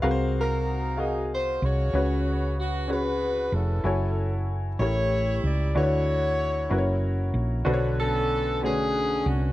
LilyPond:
<<
  \new Staff \with { instrumentName = "Grand piano" } { \time 6/8 \key fis \minor \tempo 4. = 63 <bis, fis' gis' ais' b' bis' eis''>4. <fis' gis' ais' dis'' eis''>4. | <cis cis' fis' gis' b' cis''>4. <cis' fis' gis' b' cis''>4. | <e' fis' a' cis'' gis''>4. <a, e' g' a' bes' cis''>4. | <d d' e' fis' a' b' cis''>4. <cis' e' fis' ais' b' cis''>4. |
<b, d fis' a' b' bis' cis''>4. <d a cis' fis' b' cis''>4. | }
  \new Staff \with { instrumentName = "Horn section" } { \time 6/8 \key fis \minor << { r8 ais'4 gis'8 bis'8 cis''8~ | cis''8 cis''8 fis'8 b'4 a'8~ | a'4 r8 cis''4 d''8 | cis''2 r4 |
r8 a'4 gis'4 fis'8 | } \\ { r8 <dis' fis'>4. r8 <fis' gis'>8~ | <fis' gis'>4 r8 <fis' gis'>4 <cis' e'>8~ | <cis' e'>4 r8 <e' g'>4. | <e' fis'>2 r4 |
r8 <cis' d'>4 <cis' d'>4. | } >> }
  \new Staff \with { instrumentName = "Fingered electric bass" } { \clef bass \time 6/8 \key fis \minor bis,,2~ bis,,8 bis,,8 | cis,2~ cis,8 eis,,8 | fis,,4. a,,4 cis,8 | d,4. fis,,4 ais,,8 |
b,,2~ b,,8 bis,,8 | }
>>